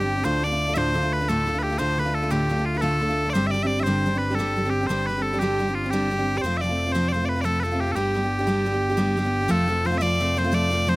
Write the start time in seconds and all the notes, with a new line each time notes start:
Already playing: G1 G4
0.00 G3 C4 D4 G4
0.17 G3 C4 D4 G4
0.23 D2 A2 D3 A3 D4 F4 C5
0.44 D3 A3 D4 F4 D5
0.51 D3 A3 D4 F4
0.67 D3 A3 D4 F4
0.74 D2 A2 D3 A3 D4 F4 C5 E5
0.94 D3 A3 D4 F4
1.03 D3 A3 D4 F4
1.13 B4
1.20 D3 A3 D4 F4
1.28 D2 A2 D3 A3 D4 F4 A4
1.46 D3 A3 D4 F4
1.54 D3 A3 D4 F4
1.59 B4
1.63 G4
1.70 D3 A3 D4 F4
1.78 D2 A2 D3 A3 D4 F4 C5
1.98 D3 A3 D4 F4 B4
2.05 D3 A3 D4 F4
2.15 A4
2.22 D3 A3 D4 F4
2.30 D2 A2 D3 A3 D4 F4 G4
2.49 D3 A3 D4 F4
2.58 D3 A3 D4 F4
2.65 F4
2.74 D3 A3 D4 F4 B4
2.81 D2 A2 D3 A3 D4 F4 A4
3.00 D3 A3 D4 F4
3.09 D3 A3 D4 F4
3.25 D3 A3 D4 F4
3.30 C5 D5
3.34 G1 G2 D3 G3 C4 D4 G4
3.47 E5
3.51 G3 C4 D5
3.55 D4 G4
3.63 G3 C4 D4 G4 D5 E5
3.79 G3 C4 D4 G4 E5
3.83 G2 D3 G3 C4 C5
3.87 D4 G4
4.06 G3 C4 D4 G4
4.14 G3 C4 D4 G4 B4
4.30 G3 C4 D4 G4
4.35 G2 A4
4.39 D3 G3 C4 D4 G4
4.57 G3 C4 D4 G4
4.65 G3 C4 D4 G4
4.70 G4
4.81 G3 C4 D4 G4
4.87 G1 G2 D3 G3 C4 D4 C5
4.91 G4
5.06 G3 C4 B4
5.10 D4 G4
5.17 G3 C4 D4 G4
5.22 A4
5.33 G3 C4 D4 G4
5.39 G2 D3 G3 C4 D4 G4
5.59 G3 C4 D4 G4
5.67 G3 C4 D4 G4
5.74 F4
5.84 G3 C4 D4 G4
5.90 G2 D3 G3 C4 D4 G4
6.10 G3 C4 D4 G4
6.18 G3 C4 D4 G4
6.35 G3 C4 D4 G4 D5
6.42 F1 F3 A3 C4 C5
6.46 F4
6.57 D5 E5
6.62 F3 A3 C4 F4
6.69 A3 C4 F4
6.86 A3 C4 F4
6.92 F3 A3 C4 F4 C5
7.08 F3 C5 D5
7.14 A3 C4 F4
7.21 A3 C4 F4 D5
7.29 B4
7.36 A3 C4 F4
7.41 F3 C4 A4 D5
7.45 A3 F4
7.60 F3 A4 B4
7.64 A3 C4 F4
7.72 A3 C4 F4
7.81 G4
7.87 A3 C4 F4
7.92 G3 G4 A4
7.96 G1 B3 D4 G4
8.14 G3 B3 D4 G4
8.23 B3 D4 G4
8.39 B3 D4 G4
8.47 G3 B3 D4 G4
8.65 G3 B3 D4 G4
8.72 B3 D4 G4
8.90 B3 D4 G4
8.97 G3 B3 D4 G4
9.17 G3 B3 D4 G4
9.24 B3 D4 G4
9.41 B3 D4 G4
9.48 F1 F3 A3 C4 F4 A4
9.68 F3 A3 C4 F4
9.85 F3 A3 C4 F4 C5
9.92 A3 C4 F4
9.98 F3 C4 E5
10.02 A3 F4 D5
10.20 F3 A3 C4 F4
10.37 F3 A3 C4 F4 C5
10.44 A3 C4 F4
10.52 F3 A3 C4 F4 D5
10.70 F3 A3 C4 F4
10.87 F3 A3 C4 F4 C5